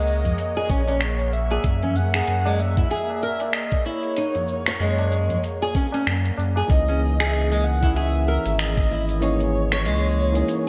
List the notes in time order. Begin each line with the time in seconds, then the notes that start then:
Already playing: C#2 G#3 A#3 G#4 A#4 C#5 D#5 F#5
0.07 shaker
0.25 open hi-hat, tabla ge, shaker
0.38 open hi-hat, shaker
0.57 G#4, tabla tin, shaker
0.70 A#1 C#4 C#5, kick, shaker
0.88 C#4, open hi-hat, tabla na, tabla tin, shaker
1.01 finger snap, open hi-hat, shaker
1.19 open hi-hat, shaker
1.33 E5, shaker
1.51 G#4, open hi-hat, tabla na, tabla tin, shaker
1.64 F#2, kick, open hi-hat, shaker
1.83 C#4, open hi-hat, tabla ge, shaker
1.96 F#5, shaker
2.14 G#4, finger snap, shaker
2.27 F#2, open hi-hat, shaker
2.45 G#3, tabla na, shaker
2.59 E5, shaker
2.77 E4, kick, open hi-hat, tabla ge, shaker
2.91 G#4, open hi-hat, shaker
3.09 tabla na, shaker
3.22 A#4, tabla tin, shaker
3.40 open hi-hat, tabla na, tabla tin, shaker
3.53 D#5, finger snap, open hi-hat, shaker
3.72 kick, open hi-hat, tabla tin, shaker
3.85 E4 C#5, shaker
4.03 open hi-hat, shaker
4.17 D#4, open hi-hat, shaker
4.35 open hi-hat, tabla ge, shaker
4.48 shaker
4.66 C#5, finger snap, open hi-hat, tabla tin, shaker
4.80 F#2 G#3, open hi-hat, shaker
4.98 open hi-hat, tabla na, shaker
5.12 tabla tin, shaker
5.30 open hi-hat, tabla ge, shaker
5.44 open hi-hat, shaker
5.61 G#4, open hi-hat, tabla tin, shaker
5.75 C#4, kick, shaker
5.92 C#4, open hi-hat, tabla na, tabla tin, shaker
6.07 F#2, finger snap, open hi-hat, shaker
6.26 open hi-hat, shaker
6.38 F#2, tabla na, shaker
6.56 G#4, open hi-hat, tabla na, tabla tin, shaker
6.68 C#2 E3 A#3 C#4 D#4 D#5, kick, open hi-hat, shaker
6.72 G#4
6.88 C#4, open hi-hat, shaker
7.20 G#4, finger snap, shaker
7.26 E5
7.32 D#5, open hi-hat, shaker
7.52 G#3, shaker
7.64 F#5
7.81 E3 A#3 C#4 E4 G#4 C#5, kick, open hi-hat, shaker
7.96 G#4 E5, open hi-hat, shaker
8.15 shaker
8.28 A#4
8.46 G#1, open hi-hat, shaker
8.59 D#5, finger snap, open hi-hat, shaker
8.77 kick, open hi-hat, shaker
8.91 E4
9.09 open hi-hat, shaker
9.20 E3 A#3 C#4 D#4 G#4 C#5 D#5, open hi-hat, shaker
9.40 open hi-hat, shaker
9.72 C#5, finger snap, shaker
9.86 C#2 G#3, open hi-hat, shaker
10.04 shaker
10.32 E3 A#3 C#4 D#4, open hi-hat, shaker
10.36 G#4
10.48 open hi-hat, shaker